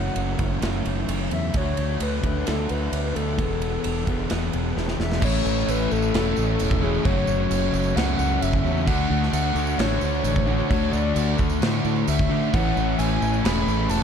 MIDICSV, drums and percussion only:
0, 0, Header, 1, 2, 480
1, 0, Start_track
1, 0, Key_signature, 3, "major"
1, 0, Tempo, 458365
1, 1616, Time_signature, 4, 2, 24, 8
1, 14693, End_track
2, 0, Start_track
2, 0, Title_t, "Drums"
2, 165, Note_on_c, 9, 51, 80
2, 270, Note_off_c, 9, 51, 0
2, 406, Note_on_c, 9, 51, 69
2, 410, Note_on_c, 9, 36, 88
2, 511, Note_off_c, 9, 51, 0
2, 514, Note_off_c, 9, 36, 0
2, 653, Note_on_c, 9, 51, 92
2, 664, Note_on_c, 9, 38, 109
2, 757, Note_off_c, 9, 51, 0
2, 769, Note_off_c, 9, 38, 0
2, 895, Note_on_c, 9, 51, 61
2, 1000, Note_off_c, 9, 51, 0
2, 1138, Note_on_c, 9, 51, 94
2, 1242, Note_off_c, 9, 51, 0
2, 1375, Note_on_c, 9, 51, 62
2, 1479, Note_off_c, 9, 51, 0
2, 1611, Note_on_c, 9, 51, 89
2, 1616, Note_on_c, 9, 36, 113
2, 1716, Note_off_c, 9, 51, 0
2, 1721, Note_off_c, 9, 36, 0
2, 1855, Note_on_c, 9, 51, 73
2, 1960, Note_off_c, 9, 51, 0
2, 2098, Note_on_c, 9, 51, 97
2, 2202, Note_off_c, 9, 51, 0
2, 2341, Note_on_c, 9, 36, 88
2, 2341, Note_on_c, 9, 51, 72
2, 2445, Note_off_c, 9, 36, 0
2, 2446, Note_off_c, 9, 51, 0
2, 2584, Note_on_c, 9, 51, 88
2, 2595, Note_on_c, 9, 38, 114
2, 2688, Note_off_c, 9, 51, 0
2, 2700, Note_off_c, 9, 38, 0
2, 2819, Note_on_c, 9, 51, 58
2, 2924, Note_off_c, 9, 51, 0
2, 3066, Note_on_c, 9, 51, 83
2, 3170, Note_off_c, 9, 51, 0
2, 3311, Note_on_c, 9, 51, 65
2, 3416, Note_off_c, 9, 51, 0
2, 3545, Note_on_c, 9, 36, 99
2, 3546, Note_on_c, 9, 51, 74
2, 3650, Note_off_c, 9, 36, 0
2, 3651, Note_off_c, 9, 51, 0
2, 3788, Note_on_c, 9, 51, 65
2, 3893, Note_off_c, 9, 51, 0
2, 4023, Note_on_c, 9, 51, 92
2, 4128, Note_off_c, 9, 51, 0
2, 4265, Note_on_c, 9, 36, 81
2, 4265, Note_on_c, 9, 51, 64
2, 4370, Note_off_c, 9, 36, 0
2, 4370, Note_off_c, 9, 51, 0
2, 4501, Note_on_c, 9, 51, 84
2, 4512, Note_on_c, 9, 38, 110
2, 4605, Note_off_c, 9, 51, 0
2, 4617, Note_off_c, 9, 38, 0
2, 4747, Note_on_c, 9, 51, 61
2, 4852, Note_off_c, 9, 51, 0
2, 4997, Note_on_c, 9, 38, 58
2, 5102, Note_off_c, 9, 38, 0
2, 5111, Note_on_c, 9, 38, 62
2, 5216, Note_off_c, 9, 38, 0
2, 5235, Note_on_c, 9, 38, 83
2, 5340, Note_off_c, 9, 38, 0
2, 5359, Note_on_c, 9, 38, 71
2, 5464, Note_off_c, 9, 38, 0
2, 5467, Note_on_c, 9, 49, 121
2, 5467, Note_on_c, 9, 57, 64
2, 5469, Note_on_c, 9, 36, 117
2, 5572, Note_off_c, 9, 49, 0
2, 5572, Note_off_c, 9, 57, 0
2, 5573, Note_off_c, 9, 36, 0
2, 5712, Note_on_c, 9, 54, 69
2, 5817, Note_off_c, 9, 54, 0
2, 5847, Note_on_c, 9, 38, 38
2, 5951, Note_off_c, 9, 38, 0
2, 5952, Note_on_c, 9, 57, 67
2, 5961, Note_on_c, 9, 54, 92
2, 6056, Note_off_c, 9, 57, 0
2, 6066, Note_off_c, 9, 54, 0
2, 6193, Note_on_c, 9, 54, 78
2, 6298, Note_off_c, 9, 54, 0
2, 6308, Note_on_c, 9, 54, 83
2, 6413, Note_off_c, 9, 54, 0
2, 6432, Note_on_c, 9, 57, 66
2, 6444, Note_on_c, 9, 38, 118
2, 6537, Note_off_c, 9, 57, 0
2, 6548, Note_off_c, 9, 38, 0
2, 6664, Note_on_c, 9, 54, 81
2, 6769, Note_off_c, 9, 54, 0
2, 6787, Note_on_c, 9, 54, 32
2, 6891, Note_off_c, 9, 54, 0
2, 6905, Note_on_c, 9, 54, 110
2, 6909, Note_on_c, 9, 57, 66
2, 7010, Note_off_c, 9, 54, 0
2, 7014, Note_off_c, 9, 57, 0
2, 7028, Note_on_c, 9, 36, 100
2, 7132, Note_off_c, 9, 36, 0
2, 7150, Note_on_c, 9, 54, 31
2, 7255, Note_off_c, 9, 54, 0
2, 7273, Note_on_c, 9, 54, 34
2, 7378, Note_off_c, 9, 54, 0
2, 7383, Note_on_c, 9, 57, 56
2, 7387, Note_on_c, 9, 36, 111
2, 7488, Note_off_c, 9, 57, 0
2, 7491, Note_off_c, 9, 36, 0
2, 7616, Note_on_c, 9, 54, 90
2, 7721, Note_off_c, 9, 54, 0
2, 7864, Note_on_c, 9, 54, 116
2, 7868, Note_on_c, 9, 57, 63
2, 7968, Note_off_c, 9, 54, 0
2, 7973, Note_off_c, 9, 57, 0
2, 8102, Note_on_c, 9, 54, 88
2, 8206, Note_off_c, 9, 54, 0
2, 8208, Note_on_c, 9, 54, 88
2, 8312, Note_off_c, 9, 54, 0
2, 8347, Note_on_c, 9, 57, 73
2, 8358, Note_on_c, 9, 38, 117
2, 8451, Note_off_c, 9, 57, 0
2, 8463, Note_off_c, 9, 38, 0
2, 8576, Note_on_c, 9, 54, 94
2, 8681, Note_off_c, 9, 54, 0
2, 8820, Note_on_c, 9, 57, 72
2, 8822, Note_on_c, 9, 54, 114
2, 8924, Note_off_c, 9, 57, 0
2, 8927, Note_off_c, 9, 54, 0
2, 8937, Note_on_c, 9, 36, 89
2, 8951, Note_on_c, 9, 54, 32
2, 9042, Note_off_c, 9, 36, 0
2, 9056, Note_off_c, 9, 54, 0
2, 9071, Note_on_c, 9, 54, 33
2, 9176, Note_off_c, 9, 54, 0
2, 9190, Note_on_c, 9, 54, 36
2, 9292, Note_on_c, 9, 57, 70
2, 9294, Note_on_c, 9, 36, 108
2, 9295, Note_off_c, 9, 54, 0
2, 9397, Note_off_c, 9, 57, 0
2, 9399, Note_off_c, 9, 36, 0
2, 9666, Note_on_c, 9, 38, 32
2, 9771, Note_off_c, 9, 38, 0
2, 9773, Note_on_c, 9, 57, 68
2, 9774, Note_on_c, 9, 54, 117
2, 9878, Note_off_c, 9, 54, 0
2, 9878, Note_off_c, 9, 57, 0
2, 10008, Note_on_c, 9, 54, 91
2, 10112, Note_off_c, 9, 54, 0
2, 10126, Note_on_c, 9, 54, 88
2, 10230, Note_off_c, 9, 54, 0
2, 10252, Note_on_c, 9, 57, 70
2, 10264, Note_on_c, 9, 38, 116
2, 10357, Note_off_c, 9, 57, 0
2, 10369, Note_off_c, 9, 38, 0
2, 10484, Note_on_c, 9, 54, 89
2, 10589, Note_off_c, 9, 54, 0
2, 10615, Note_on_c, 9, 54, 34
2, 10720, Note_off_c, 9, 54, 0
2, 10726, Note_on_c, 9, 54, 109
2, 10733, Note_on_c, 9, 57, 65
2, 10831, Note_off_c, 9, 54, 0
2, 10837, Note_off_c, 9, 57, 0
2, 10845, Note_on_c, 9, 54, 32
2, 10850, Note_on_c, 9, 36, 97
2, 10949, Note_off_c, 9, 54, 0
2, 10955, Note_off_c, 9, 36, 0
2, 10966, Note_on_c, 9, 54, 33
2, 11071, Note_off_c, 9, 54, 0
2, 11093, Note_on_c, 9, 54, 33
2, 11198, Note_off_c, 9, 54, 0
2, 11206, Note_on_c, 9, 54, 31
2, 11212, Note_on_c, 9, 36, 110
2, 11212, Note_on_c, 9, 57, 61
2, 11311, Note_off_c, 9, 54, 0
2, 11316, Note_off_c, 9, 36, 0
2, 11316, Note_off_c, 9, 57, 0
2, 11328, Note_on_c, 9, 54, 30
2, 11432, Note_off_c, 9, 54, 0
2, 11448, Note_on_c, 9, 54, 88
2, 11553, Note_off_c, 9, 54, 0
2, 11686, Note_on_c, 9, 54, 105
2, 11687, Note_on_c, 9, 57, 70
2, 11790, Note_off_c, 9, 54, 0
2, 11791, Note_off_c, 9, 57, 0
2, 11919, Note_on_c, 9, 54, 74
2, 11930, Note_on_c, 9, 36, 93
2, 12024, Note_off_c, 9, 54, 0
2, 12035, Note_off_c, 9, 36, 0
2, 12038, Note_on_c, 9, 54, 87
2, 12143, Note_off_c, 9, 54, 0
2, 12168, Note_on_c, 9, 57, 67
2, 12180, Note_on_c, 9, 38, 118
2, 12273, Note_off_c, 9, 57, 0
2, 12279, Note_on_c, 9, 54, 31
2, 12284, Note_off_c, 9, 38, 0
2, 12384, Note_off_c, 9, 54, 0
2, 12405, Note_on_c, 9, 54, 74
2, 12510, Note_off_c, 9, 54, 0
2, 12525, Note_on_c, 9, 54, 28
2, 12630, Note_off_c, 9, 54, 0
2, 12645, Note_on_c, 9, 54, 99
2, 12651, Note_on_c, 9, 57, 71
2, 12750, Note_off_c, 9, 54, 0
2, 12755, Note_off_c, 9, 57, 0
2, 12769, Note_on_c, 9, 36, 98
2, 12874, Note_off_c, 9, 36, 0
2, 12888, Note_on_c, 9, 54, 26
2, 12993, Note_off_c, 9, 54, 0
2, 13016, Note_on_c, 9, 54, 28
2, 13121, Note_off_c, 9, 54, 0
2, 13129, Note_on_c, 9, 36, 113
2, 13129, Note_on_c, 9, 57, 67
2, 13234, Note_off_c, 9, 36, 0
2, 13234, Note_off_c, 9, 57, 0
2, 13372, Note_on_c, 9, 54, 72
2, 13477, Note_off_c, 9, 54, 0
2, 13602, Note_on_c, 9, 54, 91
2, 13610, Note_on_c, 9, 57, 66
2, 13706, Note_off_c, 9, 54, 0
2, 13715, Note_off_c, 9, 57, 0
2, 13845, Note_on_c, 9, 54, 78
2, 13950, Note_off_c, 9, 54, 0
2, 13966, Note_on_c, 9, 54, 73
2, 14070, Note_off_c, 9, 54, 0
2, 14085, Note_on_c, 9, 57, 69
2, 14096, Note_on_c, 9, 38, 126
2, 14190, Note_off_c, 9, 57, 0
2, 14201, Note_off_c, 9, 38, 0
2, 14329, Note_on_c, 9, 54, 74
2, 14433, Note_off_c, 9, 54, 0
2, 14441, Note_on_c, 9, 54, 27
2, 14546, Note_off_c, 9, 54, 0
2, 14551, Note_on_c, 9, 54, 104
2, 14564, Note_on_c, 9, 57, 75
2, 14656, Note_off_c, 9, 54, 0
2, 14668, Note_off_c, 9, 57, 0
2, 14693, End_track
0, 0, End_of_file